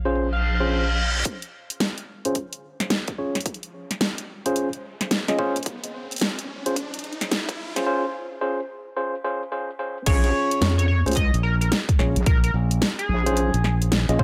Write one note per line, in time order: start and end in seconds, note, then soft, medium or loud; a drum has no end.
0.00 1.24 A#1 medium
0.05 0.28 C#4 medium
0.05 0.28 F4 medium
0.05 0.28 G#4 medium
0.05 0.28 C5 medium
0.05 closed hi-hat medium
0.15 closed hi-hat medium
0.15 reverse cymbal medium
0.33 1.08 F5 medium
0.33 closed hi-hat soft
0.60 0.83 C#4 medium
0.60 0.83 F4 medium
0.60 0.83 G#4 medium
0.60 0.83 C5 medium
0.60 closed hi-hat medium
0.88 closed hi-hat soft
1.25 kick loud
1.25 closed hi-hat medium
1.25 riser medium
1.42 closed hi-hat soft
1.70 closed hi-hat medium
1.80 snare loud
1.80 closed hi-hat medium
1.98 closed hi-hat soft
2.25 2.37 C#4 medium
2.25 2.37 F4 medium
2.25 2.37 G#4 medium
2.25 2.37 C5 medium
2.25 closed hi-hat medium
2.35 kick medium
2.35 closed hi-hat medium
2.53 closed hi-hat soft
2.80 snare medium
2.80 closed hi-hat medium
2.90 snare loud
2.90 closed hi-hat medium
3.08 kick loud
3.08 closed hi-hat soft
3.18 3.36 C#4 medium
3.18 3.36 F4 medium
3.18 3.36 G#4 medium
3.18 3.36 C#5 medium
3.35 snare soft
3.35 closed hi-hat soft
3.41 closed hi-hat soft
3.46 kick loud
3.46 closed hi-hat medium
3.54 closed hi-hat soft
3.63 closed hi-hat soft
3.91 snare soft
3.91 closed hi-hat medium
4.01 snare loud
4.01 closed hi-hat medium
4.18 closed hi-hat soft
4.46 4.68 C#4 medium
4.46 4.68 F4 medium
4.46 4.68 G#4 medium
4.46 4.68 C5 medium
4.46 closed hi-hat medium
4.56 closed hi-hat medium
4.73 closed hi-hat soft
5.01 snare medium
5.01 closed hi-hat medium
5.11 snare loud
5.11 closed hi-hat medium
5.28 5.37 C#4 medium
5.28 5.37 F4 medium
5.28 5.37 G#4 medium
5.28 5.37 D#5 medium
5.28 snare medium
5.28 closed hi-hat soft
5.39 5.57 C#4 medium
5.39 5.57 F4 medium
5.39 5.57 G#4 medium
5.39 5.57 C5 loud
5.39 kick loud
5.56 closed hi-hat medium
5.56 closed hi-hat soft
5.63 closed hi-hat soft
5.66 kick loud
5.66 closed hi-hat medium
5.84 closed hi-hat soft
6.11 closed hi-hat soft
6.13 closed hi-hat soft
6.16 closed hi-hat soft
6.18 closed hi-hat soft
6.20 snare loud
6.20 closed hi-hat soft
6.21 closed hi-hat medium
6.39 closed hi-hat soft
6.66 6.75 C#4 medium
6.66 6.75 F4 medium
6.66 6.75 G#4 medium
6.66 6.75 C5 medium
6.66 closed hi-hat medium
6.76 kick medium
6.76 closed hi-hat medium
6.94 closed hi-hat soft
6.99 closed hi-hat soft
7.04 closed hi-hat soft
7.13 closed hi-hat soft
7.21 snare medium
7.21 closed hi-hat medium
7.32 snare loud
7.32 closed hi-hat medium
7.49 kick loud
7.49 closed hi-hat soft
7.76 7.85 C#4 medium
7.76 7.85 F4 medium
7.76 7.85 G#4 medium
7.76 7.85 C5 medium
7.76 snare soft
7.76 closed hi-hat medium
7.86 8.04 C#4 medium
7.86 8.04 F4 medium
7.86 8.04 G#4 medium
7.86 8.04 C5 medium
8.41 8.59 C#4 medium
8.41 8.59 F4 medium
8.41 8.59 G#4 medium
8.41 8.59 C5 medium
8.96 9.14 C#4 medium
8.96 9.14 F4 medium
8.96 9.14 G#4 medium
8.96 9.14 C5 medium
9.24 9.42 C#4 medium
9.24 9.42 F4 medium
9.24 9.42 G#4 medium
9.24 9.42 C5 medium
9.52 9.70 C#4 medium
9.52 9.70 F4 medium
9.52 9.70 G#4 medium
9.52 9.70 C5 medium
9.79 9.97 C#4 medium
9.79 9.97 F4 medium
9.79 9.97 G#4 medium
9.79 9.97 C5 medium
10.06 10.32 A#1 medium
10.06 10.89 C#4 loud
10.06 10.89 F4 medium
10.06 10.89 G#4 medium
10.06 10.75 C#5 loud
10.06 10.89 C#5 loud
10.06 kick loud
10.06 closed hi-hat medium
10.06 crash loud
10.24 closed hi-hat soft
10.51 closed hi-hat medium
10.61 11.03 F2 loud
10.61 snare loud
10.61 closed hi-hat medium
10.78 10.85 C#5 medium
10.78 closed hi-hat soft
10.88 11.00 C#5 medium
11.06 11.31 C#2 medium
11.06 11.18 C#4 medium
11.06 11.18 F4 medium
11.06 11.18 G#4 medium
11.06 11.18 C5 medium
11.06 closed hi-hat soft
11.08 closed hi-hat soft
11.11 closed hi-hat soft
11.13 closed hi-hat soft
11.15 11.35 D#5 loud
11.15 kick medium
11.15 closed hi-hat soft
11.17 closed hi-hat medium
11.34 11.70 A#1 loud
11.34 closed hi-hat soft
11.43 11.55 A#4 medium
11.61 11.68 A#4 medium
11.61 closed hi-hat medium
11.72 snare loud
11.72 closed hi-hat medium
11.89 kick loud
11.89 closed hi-hat soft
11.99 12.14 A#1 medium
11.99 12.17 C#4 medium
11.99 12.17 F4 medium
11.99 12.17 G#4 medium
11.99 12.17 C#5 medium
11.99 snare medium
12.16 12.25 A#1 loud
12.16 closed hi-hat medium
12.26 12.52 A#1 loud
12.26 12.38 A#4 medium
12.26 kick loud
12.26 closed hi-hat medium
12.44 12.50 A#4 medium
12.44 closed hi-hat soft
12.54 12.80 A#1 loud
12.71 closed hi-hat medium
12.82 snare loud
12.82 closed hi-hat medium
12.99 13.75 G#4 loud
12.99 closed hi-hat soft
13.09 13.51 A#1 loud
13.26 13.49 C#4 medium
13.26 13.49 F4 medium
13.26 13.49 G#4 medium
13.26 13.49 C5 loud
13.26 closed hi-hat medium
13.37 closed hi-hat medium
13.54 14.06 A#1 loud
13.54 closed hi-hat soft
13.64 snare medium
13.82 closed hi-hat medium
13.92 snare loud
13.92 closed hi-hat medium
14.09 14.24 A#1 loud
14.09 14.18 C#4 medium
14.09 14.18 F4 medium
14.09 14.18 G#4 medium
14.09 14.18 D#5 medium
14.09 closed hi-hat soft
14.19 14.24 C#4 medium
14.19 14.24 F4 medium
14.19 14.24 G#4 medium
14.19 14.24 C5 loud
14.19 kick loud